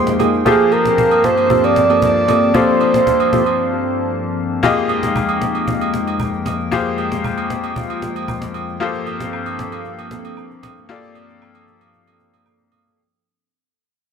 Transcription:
Already playing: F2 F3 G#3 A#3 D#4 F4 G4 G#4 C5 D#5 G5 C6
0.07 cajon slap
0.19 A#3 D#4 F4 G4 G#4, cajon slap, high agogo
0.34 cajon slap
0.45 G2 A3 A#3 C4 F4 G4 G#4 A4 C5 A5, cajon bass, high agogo
0.52 A#3
0.72 A#4, cajon slap, high agogo
0.85 cajon slap
0.98 cajon bass, cajon slap
1.11 high agogo
1.24 A#3 C4 F4 G4 A4 C5, cajon slap
1.38 cajon slap, high agogo
1.50 A#3 C4 F4 G4 A4, cajon bass
1.64 D5, cajon slap, high agogo
1.76 cajon slap
1.90 A#3 C4 F4 G4 A4, cajon slap, high agogo
2.02 D5, cajon bass, cajon slap
2.16 cajon slap
2.28 A#3 C4 F4 G4 A4, cajon slap, high agogo
2.42 cajon slap
2.54 A#3 C4 F4 G4 A4 C5 D5, cajon bass, high agogo
2.81 cajon slap, high agogo
2.94 cajon slap
3.07 cajon bass, cajon slap
3.20 high agogo
3.33 A#3 C4 F4 G4 A4, cajon bass, cajon slap
3.46 cajon slap, high agogo
4.63 F2 F3 G#3 A#3 D#4 F4 G4 G#4 D#5 G5, cajon bass, high agogo
4.77 cajon slap
4.89 cajon slap, high agogo
5.03 cajon slap
5.16 cajon bass, low woodblock
5.29 cajon slap, high agogo
5.42 cajon slap
5.55 cajon slap, high agogo
5.68 cajon bass
5.81 cajon slap, high agogo
5.94 cajon slap
6.07 cajon slap, high agogo
6.20 cajon bass, low woodblock
6.33 cajon slap
6.46 cajon slap, high agogo
6.60 cajon slap
6.71 A#3 F4 G4 G#4 C5, cajon bass, high agogo
6.86 cajon slap
6.98 cajon slap, high agogo
7.12 cajon slap
7.24 cajon bass, low woodblock
7.38 cajon slap, high agogo
7.50 cajon slap
7.64 cajon slap, high agogo
7.76 cajon bass
7.90 cajon slap, high agogo
8.02 cajon slap
8.16 cajon slap, high agogo
8.28 cajon bass, low woodblock
8.42 cajon slap
8.54 cajon slap, high agogo
8.68 cajon slap
8.80 G2 A#3 C4 F4 G4 A4 C5, cajon slap, high agogo
8.95 cajon slap
9.07 cajon slap, high agogo
9.20 cajon slap
9.33 cajon slap, low woodblock
9.46 cajon slap, high agogo
9.59 cajon slap
9.72 cajon slap, high agogo
9.85 cajon slap
9.98 cajon slap, high agogo
10.11 cajon slap
10.25 cajon slap, high agogo
10.37 cajon slap, low woodblock
10.51 cajon slap
10.63 cajon slap, high agogo
10.77 cajon slap
10.89 A#3 F4 G4 A4 D5, cajon slap, high agogo
11.03 cajon slap
11.15 cajon slap, high agogo
11.29 cajon slap
11.42 cajon slap, low woodblock
11.55 high agogo
11.67 cajon slap
11.81 cajon slap, high agogo
11.94 cajon slap
12.07 cajon slap, high agogo
12.19 cajon slap
12.33 cajon slap, high agogo
12.46 cajon slap, low woodblock
12.72 cajon slap, high agogo
12.86 cajon slap

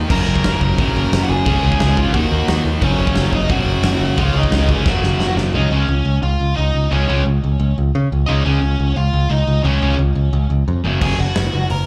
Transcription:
0.08 F#1 F#2 C#3 F#3 A#4 A#5, kick, crash
0.27 F#1
0.36 kick
0.44 F#1, snare, open hi-hat
0.61 F#1 A#4 A#5, kick
0.78 B1 F#2 C#3 F#3, kick, open hi-hat
0.96 F#1
1.13 F#1, snare, open hi-hat
1.23 F#5
1.29 F#1 G#4 G#5
1.45 C#2 C#3 G#3 C#4, kick, open hi-hat
1.63 C#2
1.72 kick
1.80 C#2, snare, open hi-hat
1.97 F4 F5, kick
2.13 D#2 D#3 A#3 D#4 F#4 F#5, kick, open hi-hat
2.31 D#2
2.48 D#2, snare, open hi-hat
2.65 D#2
2.80 F#1 F#2 C#3 F#3 C#4 C#5, kick, open hi-hat
2.99 F#1
3.07 kick
3.15 F#1, snare, open hi-hat
3.32 F#1 D#4 D#5, kick
3.49 B1 F#2 C#3 F#3 F#4 F#5, kick, open hi-hat
3.66 F#1
3.83 F#1 F#4 F#5, snare, open hi-hat
3.99 F#1
4.05 F#4 F#5
4.17 C#2 C#3 G#3 C#4 F4 F5, kick, open hi-hat
4.33 C#2 D#4
4.37 D#5
4.43 kick
4.50 C#2, snare, open hi-hat
4.54 D#4 D#5
4.69 C#4 C#5, kick
4.86 F#1 F#2 C#3 F#3 F#4 F#5, kick, snare
5.02 F#1, snare
5.19 F#1, snare
5.36 F#1, snare
5.53 C#2 C#3 G#3 C#4 D#4 D#5
5.71 C#2 C#3 G#3 C#4 C#5
5.88 C#2
6.05 C#2
6.22 C#2 F4 F5
6.40 C#2
6.56 C#2 D#4 D#5
6.74 C#2
6.91 C#2 C#3 G#3 C#4 C#5
7.07 C#2 C#3 G#3 C#4
7.26 C#2
7.44 C#2
7.60 C#2
7.78 C#2
7.95 C#3
8.12 C#2
8.26 C#2 C#3 G#3 C#4 D#4 D#5
8.43 C#2 C#3 G#3 C#4 C#5
8.62 C#2
8.80 C#2
8.96 C#2 F4 F5
9.13 C#2
9.30 C#2 D#4 D#5
9.47 C#2
9.63 C#2 C#3 G#3 C#4 C#5
9.82 C#2 C#3 G#3 C#4
9.99 C#2
10.15 C#2
10.33 C#2
10.50 C#2
10.68 F2
10.84 F#1 F#2 C#3 F#3
11.00 F#1 F#2 C#3 F#3 G#4 G#5, kick, crash
11.19 F#1 F#4 F#5
11.35 F#1, snare, open hi-hat
11.53 F#1
11.70 F#1 A#4 A#5, open hi-hat

